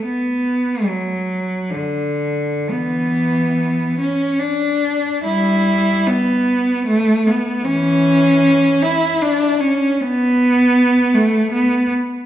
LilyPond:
\new Staff \with { instrumentName = "Cello" } { \time 3/4 \key b \minor \tempo 4 = 74 b4 fis4 d4 | <e b>4. cis'8 d'4 | <g e'>4 b4 a8 b8 | <e cis'>4. e'8 d'8 cis'8 |
b4. a8 b8 r8 | }